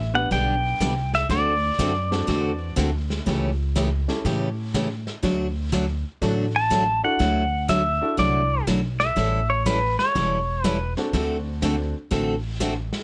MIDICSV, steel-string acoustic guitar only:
0, 0, Header, 1, 2, 480
1, 0, Start_track
1, 0, Tempo, 491803
1, 1270, Time_signature, 4, 2, 24, 8
1, 12721, End_track
2, 0, Start_track
2, 0, Title_t, "Steel-string acoustic guitar"
2, 0, Program_c, 0, 25
2, 301, Note_on_c, 0, 50, 52
2, 304, Note_on_c, 0, 59, 57
2, 305, Note_on_c, 0, 55, 57
2, 310, Note_on_c, 0, 62, 62
2, 312, Note_on_c, 0, 67, 63
2, 525, Note_off_c, 0, 50, 0
2, 526, Note_off_c, 0, 55, 0
2, 526, Note_off_c, 0, 59, 0
2, 529, Note_off_c, 0, 62, 0
2, 530, Note_off_c, 0, 67, 0
2, 785, Note_on_c, 0, 50, 71
2, 790, Note_on_c, 0, 59, 78
2, 791, Note_on_c, 0, 55, 73
2, 793, Note_on_c, 0, 67, 81
2, 797, Note_on_c, 0, 62, 79
2, 903, Note_off_c, 0, 50, 0
2, 906, Note_off_c, 0, 55, 0
2, 906, Note_off_c, 0, 59, 0
2, 908, Note_off_c, 0, 67, 0
2, 909, Note_off_c, 0, 62, 0
2, 1265, Note_on_c, 0, 50, 56
2, 1265, Note_on_c, 0, 60, 57
2, 1266, Note_on_c, 0, 57, 58
2, 1267, Note_on_c, 0, 66, 63
2, 1273, Note_on_c, 0, 69, 64
2, 1487, Note_off_c, 0, 50, 0
2, 1487, Note_off_c, 0, 60, 0
2, 1488, Note_off_c, 0, 57, 0
2, 1488, Note_off_c, 0, 66, 0
2, 1491, Note_off_c, 0, 69, 0
2, 1746, Note_on_c, 0, 50, 66
2, 1747, Note_on_c, 0, 57, 73
2, 1751, Note_on_c, 0, 60, 83
2, 1754, Note_on_c, 0, 66, 71
2, 1754, Note_on_c, 0, 69, 81
2, 1864, Note_off_c, 0, 50, 0
2, 1865, Note_off_c, 0, 57, 0
2, 1867, Note_off_c, 0, 60, 0
2, 1868, Note_off_c, 0, 66, 0
2, 1868, Note_off_c, 0, 69, 0
2, 2215, Note_on_c, 0, 50, 55
2, 2219, Note_on_c, 0, 57, 54
2, 2223, Note_on_c, 0, 60, 57
2, 2223, Note_on_c, 0, 66, 63
2, 2224, Note_on_c, 0, 69, 58
2, 2443, Note_off_c, 0, 50, 0
2, 2444, Note_off_c, 0, 57, 0
2, 2447, Note_off_c, 0, 60, 0
2, 2447, Note_off_c, 0, 66, 0
2, 2447, Note_off_c, 0, 69, 0
2, 2695, Note_on_c, 0, 50, 71
2, 2695, Note_on_c, 0, 57, 72
2, 2698, Note_on_c, 0, 60, 75
2, 2700, Note_on_c, 0, 66, 84
2, 2701, Note_on_c, 0, 69, 75
2, 2819, Note_off_c, 0, 50, 0
2, 2819, Note_off_c, 0, 57, 0
2, 2821, Note_off_c, 0, 60, 0
2, 2822, Note_off_c, 0, 66, 0
2, 2822, Note_off_c, 0, 69, 0
2, 3181, Note_on_c, 0, 49, 56
2, 3185, Note_on_c, 0, 52, 56
2, 3188, Note_on_c, 0, 57, 55
2, 3189, Note_on_c, 0, 61, 59
2, 3189, Note_on_c, 0, 67, 63
2, 3406, Note_off_c, 0, 49, 0
2, 3408, Note_off_c, 0, 52, 0
2, 3409, Note_off_c, 0, 57, 0
2, 3410, Note_off_c, 0, 61, 0
2, 3410, Note_off_c, 0, 67, 0
2, 3665, Note_on_c, 0, 49, 73
2, 3668, Note_on_c, 0, 52, 73
2, 3674, Note_on_c, 0, 57, 80
2, 3674, Note_on_c, 0, 61, 70
2, 3675, Note_on_c, 0, 67, 78
2, 3784, Note_off_c, 0, 49, 0
2, 3786, Note_off_c, 0, 52, 0
2, 3789, Note_off_c, 0, 57, 0
2, 3789, Note_off_c, 0, 61, 0
2, 3790, Note_off_c, 0, 67, 0
2, 4145, Note_on_c, 0, 49, 55
2, 4151, Note_on_c, 0, 52, 61
2, 4152, Note_on_c, 0, 57, 58
2, 4155, Note_on_c, 0, 61, 57
2, 4155, Note_on_c, 0, 67, 65
2, 4368, Note_off_c, 0, 49, 0
2, 4371, Note_off_c, 0, 52, 0
2, 4372, Note_off_c, 0, 57, 0
2, 4373, Note_off_c, 0, 61, 0
2, 4373, Note_off_c, 0, 67, 0
2, 4631, Note_on_c, 0, 49, 71
2, 4631, Note_on_c, 0, 52, 71
2, 4633, Note_on_c, 0, 57, 78
2, 4634, Note_on_c, 0, 61, 77
2, 4638, Note_on_c, 0, 67, 71
2, 4747, Note_off_c, 0, 49, 0
2, 4748, Note_off_c, 0, 52, 0
2, 4749, Note_off_c, 0, 57, 0
2, 4749, Note_off_c, 0, 61, 0
2, 4751, Note_off_c, 0, 67, 0
2, 5100, Note_on_c, 0, 50, 58
2, 5104, Note_on_c, 0, 54, 60
2, 5107, Note_on_c, 0, 57, 62
2, 5109, Note_on_c, 0, 66, 68
2, 5110, Note_on_c, 0, 62, 58
2, 5325, Note_off_c, 0, 50, 0
2, 5327, Note_off_c, 0, 54, 0
2, 5329, Note_off_c, 0, 57, 0
2, 5330, Note_off_c, 0, 62, 0
2, 5330, Note_off_c, 0, 66, 0
2, 5583, Note_on_c, 0, 50, 69
2, 5585, Note_on_c, 0, 54, 73
2, 5585, Note_on_c, 0, 57, 77
2, 5588, Note_on_c, 0, 62, 76
2, 5592, Note_on_c, 0, 66, 81
2, 5704, Note_off_c, 0, 50, 0
2, 5704, Note_off_c, 0, 54, 0
2, 5704, Note_off_c, 0, 57, 0
2, 5706, Note_off_c, 0, 62, 0
2, 5708, Note_off_c, 0, 66, 0
2, 6068, Note_on_c, 0, 54, 50
2, 6069, Note_on_c, 0, 50, 55
2, 6071, Note_on_c, 0, 57, 55
2, 6075, Note_on_c, 0, 62, 58
2, 6075, Note_on_c, 0, 66, 65
2, 6289, Note_off_c, 0, 54, 0
2, 6290, Note_off_c, 0, 50, 0
2, 6291, Note_off_c, 0, 57, 0
2, 6292, Note_off_c, 0, 66, 0
2, 6293, Note_off_c, 0, 62, 0
2, 6541, Note_on_c, 0, 50, 73
2, 6544, Note_on_c, 0, 54, 69
2, 6548, Note_on_c, 0, 57, 80
2, 6549, Note_on_c, 0, 62, 73
2, 6549, Note_on_c, 0, 66, 85
2, 6662, Note_off_c, 0, 50, 0
2, 6664, Note_off_c, 0, 54, 0
2, 6666, Note_off_c, 0, 57, 0
2, 6666, Note_off_c, 0, 62, 0
2, 6666, Note_off_c, 0, 66, 0
2, 7019, Note_on_c, 0, 50, 55
2, 7022, Note_on_c, 0, 54, 57
2, 7023, Note_on_c, 0, 57, 56
2, 7026, Note_on_c, 0, 64, 63
2, 7026, Note_on_c, 0, 66, 57
2, 7244, Note_off_c, 0, 50, 0
2, 7246, Note_off_c, 0, 54, 0
2, 7247, Note_off_c, 0, 57, 0
2, 7248, Note_off_c, 0, 64, 0
2, 7248, Note_off_c, 0, 66, 0
2, 7499, Note_on_c, 0, 50, 67
2, 7500, Note_on_c, 0, 54, 76
2, 7503, Note_on_c, 0, 57, 75
2, 7505, Note_on_c, 0, 64, 76
2, 7507, Note_on_c, 0, 66, 80
2, 7621, Note_off_c, 0, 50, 0
2, 7622, Note_off_c, 0, 54, 0
2, 7623, Note_off_c, 0, 57, 0
2, 7624, Note_off_c, 0, 64, 0
2, 7625, Note_off_c, 0, 66, 0
2, 7976, Note_on_c, 0, 50, 56
2, 7978, Note_on_c, 0, 54, 53
2, 7979, Note_on_c, 0, 57, 54
2, 7983, Note_on_c, 0, 64, 62
2, 7983, Note_on_c, 0, 66, 63
2, 8203, Note_off_c, 0, 50, 0
2, 8204, Note_off_c, 0, 54, 0
2, 8204, Note_off_c, 0, 57, 0
2, 8206, Note_off_c, 0, 64, 0
2, 8206, Note_off_c, 0, 66, 0
2, 8462, Note_on_c, 0, 50, 70
2, 8464, Note_on_c, 0, 54, 78
2, 8467, Note_on_c, 0, 57, 79
2, 8467, Note_on_c, 0, 66, 82
2, 8469, Note_on_c, 0, 64, 75
2, 8582, Note_off_c, 0, 50, 0
2, 8583, Note_off_c, 0, 54, 0
2, 8584, Note_off_c, 0, 57, 0
2, 8585, Note_off_c, 0, 64, 0
2, 8585, Note_off_c, 0, 66, 0
2, 8939, Note_on_c, 0, 52, 58
2, 8944, Note_on_c, 0, 55, 65
2, 8945, Note_on_c, 0, 61, 55
2, 8946, Note_on_c, 0, 64, 59
2, 8952, Note_on_c, 0, 69, 66
2, 9164, Note_off_c, 0, 52, 0
2, 9166, Note_off_c, 0, 55, 0
2, 9167, Note_off_c, 0, 61, 0
2, 9167, Note_off_c, 0, 64, 0
2, 9170, Note_off_c, 0, 69, 0
2, 9424, Note_on_c, 0, 52, 66
2, 9428, Note_on_c, 0, 55, 80
2, 9428, Note_on_c, 0, 61, 75
2, 9430, Note_on_c, 0, 64, 82
2, 9431, Note_on_c, 0, 69, 83
2, 9543, Note_off_c, 0, 52, 0
2, 9545, Note_off_c, 0, 55, 0
2, 9545, Note_off_c, 0, 61, 0
2, 9545, Note_off_c, 0, 64, 0
2, 9546, Note_off_c, 0, 69, 0
2, 9906, Note_on_c, 0, 52, 52
2, 9911, Note_on_c, 0, 55, 59
2, 9911, Note_on_c, 0, 64, 62
2, 9913, Note_on_c, 0, 61, 61
2, 9914, Note_on_c, 0, 69, 59
2, 10127, Note_off_c, 0, 52, 0
2, 10129, Note_off_c, 0, 55, 0
2, 10129, Note_off_c, 0, 64, 0
2, 10130, Note_off_c, 0, 61, 0
2, 10131, Note_off_c, 0, 69, 0
2, 10386, Note_on_c, 0, 55, 78
2, 10387, Note_on_c, 0, 52, 67
2, 10391, Note_on_c, 0, 64, 82
2, 10392, Note_on_c, 0, 61, 71
2, 10393, Note_on_c, 0, 69, 75
2, 10503, Note_off_c, 0, 55, 0
2, 10504, Note_off_c, 0, 52, 0
2, 10506, Note_off_c, 0, 61, 0
2, 10506, Note_off_c, 0, 64, 0
2, 10507, Note_off_c, 0, 69, 0
2, 10866, Note_on_c, 0, 50, 56
2, 10870, Note_on_c, 0, 57, 60
2, 10870, Note_on_c, 0, 60, 59
2, 10874, Note_on_c, 0, 66, 69
2, 10874, Note_on_c, 0, 69, 65
2, 11086, Note_off_c, 0, 50, 0
2, 11088, Note_off_c, 0, 57, 0
2, 11088, Note_off_c, 0, 60, 0
2, 11090, Note_off_c, 0, 66, 0
2, 11090, Note_off_c, 0, 69, 0
2, 11345, Note_on_c, 0, 50, 74
2, 11346, Note_on_c, 0, 57, 79
2, 11347, Note_on_c, 0, 60, 75
2, 11349, Note_on_c, 0, 66, 75
2, 11352, Note_on_c, 0, 69, 78
2, 11462, Note_off_c, 0, 50, 0
2, 11462, Note_off_c, 0, 57, 0
2, 11463, Note_off_c, 0, 60, 0
2, 11464, Note_off_c, 0, 66, 0
2, 11466, Note_off_c, 0, 69, 0
2, 11816, Note_on_c, 0, 50, 55
2, 11817, Note_on_c, 0, 57, 59
2, 11821, Note_on_c, 0, 60, 59
2, 11822, Note_on_c, 0, 66, 55
2, 11825, Note_on_c, 0, 69, 61
2, 12040, Note_off_c, 0, 50, 0
2, 12041, Note_off_c, 0, 57, 0
2, 12043, Note_off_c, 0, 60, 0
2, 12043, Note_off_c, 0, 66, 0
2, 12045, Note_off_c, 0, 69, 0
2, 12299, Note_on_c, 0, 50, 71
2, 12302, Note_on_c, 0, 57, 77
2, 12305, Note_on_c, 0, 60, 87
2, 12310, Note_on_c, 0, 66, 86
2, 12311, Note_on_c, 0, 69, 85
2, 12419, Note_off_c, 0, 50, 0
2, 12420, Note_off_c, 0, 57, 0
2, 12422, Note_off_c, 0, 60, 0
2, 12424, Note_off_c, 0, 66, 0
2, 12424, Note_off_c, 0, 69, 0
2, 12721, End_track
0, 0, End_of_file